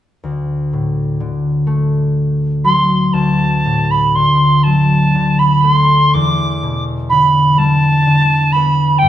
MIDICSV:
0, 0, Header, 1, 3, 480
1, 0, Start_track
1, 0, Tempo, 970874
1, 105, Time_signature, 6, 3, 24, 8
1, 1062, Tempo, 993377
1, 2982, Tempo, 963082
1, 4460, End_track
2, 0, Start_track
2, 0, Title_t, "Tin whistle"
2, 0, Program_c, 0, 75
2, 1300, Note_on_c, 0, 84, 67
2, 1536, Note_on_c, 0, 81, 56
2, 1543, Note_off_c, 0, 84, 0
2, 1911, Note_on_c, 0, 83, 47
2, 1918, Note_off_c, 0, 81, 0
2, 2029, Note_on_c, 0, 84, 51
2, 2036, Note_off_c, 0, 83, 0
2, 2261, Note_on_c, 0, 81, 56
2, 2268, Note_off_c, 0, 84, 0
2, 2627, Note_on_c, 0, 83, 52
2, 2634, Note_off_c, 0, 81, 0
2, 2732, Note_off_c, 0, 83, 0
2, 2732, Note_on_c, 0, 83, 62
2, 2785, Note_off_c, 0, 83, 0
2, 2785, Note_on_c, 0, 84, 62
2, 2988, Note_on_c, 0, 86, 73
2, 2995, Note_off_c, 0, 84, 0
2, 3341, Note_off_c, 0, 86, 0
2, 3465, Note_on_c, 0, 83, 60
2, 3708, Note_on_c, 0, 81, 69
2, 3716, Note_off_c, 0, 83, 0
2, 4177, Note_on_c, 0, 83, 65
2, 4184, Note_off_c, 0, 81, 0
2, 4406, Note_on_c, 0, 79, 70
2, 4414, Note_off_c, 0, 83, 0
2, 4460, Note_off_c, 0, 79, 0
2, 4460, End_track
3, 0, Start_track
3, 0, Title_t, "Harp"
3, 0, Program_c, 1, 46
3, 117, Note_on_c, 1, 38, 34
3, 361, Note_on_c, 1, 45, 33
3, 595, Note_on_c, 1, 50, 38
3, 616, Note_off_c, 1, 45, 0
3, 825, Note_on_c, 1, 57, 43
3, 1302, Note_on_c, 1, 54, 43
3, 1534, Note_off_c, 1, 38, 0
3, 1540, Note_on_c, 1, 38, 37
3, 1566, Note_off_c, 1, 50, 0
3, 1566, Note_off_c, 1, 54, 0
3, 1790, Note_on_c, 1, 45, 30
3, 2031, Note_on_c, 1, 50, 34
3, 2053, Note_off_c, 1, 45, 0
3, 2276, Note_on_c, 1, 54, 41
3, 2438, Note_off_c, 1, 57, 0
3, 2507, Note_off_c, 1, 50, 0
3, 2512, Note_on_c, 1, 50, 36
3, 2532, Note_off_c, 1, 54, 0
3, 2747, Note_on_c, 1, 57, 42
3, 2993, Note_on_c, 1, 40, 46
3, 3008, Note_off_c, 1, 38, 0
3, 3008, Note_off_c, 1, 50, 0
3, 3235, Note_on_c, 1, 47, 36
3, 3475, Note_on_c, 1, 50, 39
3, 3494, Note_off_c, 1, 47, 0
3, 3706, Note_on_c, 1, 55, 44
3, 3943, Note_off_c, 1, 50, 0
3, 3949, Note_on_c, 1, 50, 39
3, 3976, Note_off_c, 1, 55, 0
3, 4198, Note_on_c, 1, 59, 49
3, 4399, Note_off_c, 1, 57, 0
3, 4426, Note_on_c, 1, 43, 48
3, 4449, Note_off_c, 1, 40, 0
3, 4449, Note_off_c, 1, 50, 0
3, 4460, Note_off_c, 1, 43, 0
3, 4460, Note_off_c, 1, 59, 0
3, 4460, End_track
0, 0, End_of_file